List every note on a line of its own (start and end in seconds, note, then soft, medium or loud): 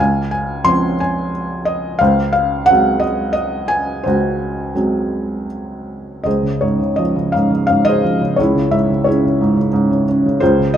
0.00 1.96 C#2 medium
0.00 0.94 F5 medium
0.00 0.29 G#5 medium
0.31 0.66 G#5 medium
0.65 1.96 F3 soft
0.65 1.96 C4 soft
0.65 1.97 C#4 medium
0.65 0.99 C6 loud
1.00 1.30 G#5 medium
1.65 2.01 D#5 medium
1.99 4.03 C#2 medium
1.99 3.00 C5 medium
1.99 2.31 F5 medium
2.33 2.69 F5 medium
2.66 3.03 F#5 loud
2.70 4.73 F#3 medium
2.70 4.73 G#3 soft
2.70 4.73 C4 medium
3.00 3.31 D#5 medium
3.33 3.67 D#5 medium
3.68 4.06 G#5 medium
4.04 6.21 C#2 medium
4.04 5.45 C5 medium
4.08 5.47 F#4 medium
4.75 6.21 F#3 soft
4.75 6.21 G#3 soft
4.75 6.22 C4 soft
6.24 8.34 C#2 soft
6.24 7.32 G#4 soft
6.24 7.32 C5 soft
6.24 6.62 D#5 medium
6.43 6.78 C#3 soft
6.61 7.33 G#2 soft
6.61 7.00 C#5 medium
6.79 7.14 C#3 soft
6.96 8.02 F3 soft
6.96 7.35 D#5 medium
7.16 7.49 C#3 soft
7.32 7.69 G#2 soft
7.32 7.65 F5 medium
7.50 7.85 C#3 soft
7.67 8.37 G#2 soft
7.67 7.86 F5 medium
7.85 8.20 C#3 soft
7.85 8.39 D#5 loud
7.89 8.36 G#4 medium
7.89 8.36 C5 medium
8.04 8.37 F3 soft
8.21 8.38 C#3 soft
8.36 10.37 C#2 medium
8.36 8.73 C#5 medium
8.40 9.07 E4 medium
8.40 9.07 G#4 soft
8.55 8.88 C#3 soft
8.71 9.40 G#2 soft
8.71 9.07 E5 medium
8.90 9.23 C#3 soft
9.04 10.07 C#4 medium
9.04 10.04 G#4 soft
9.04 9.68 C#5 medium
9.09 10.04 E4 soft
9.25 9.56 C#3 soft
9.41 9.71 G#2 medium
9.57 9.90 C#3 soft
9.73 10.38 G#2 medium
9.91 10.25 C#3 soft
10.09 10.41 C#4 soft
10.26 10.41 C#3 soft
10.40 10.77 C#2 medium
10.40 10.77 F4 medium
10.40 10.77 G#4 medium
10.40 10.72 C5 medium
10.59 10.77 C#3 soft
10.74 10.77 D#5 medium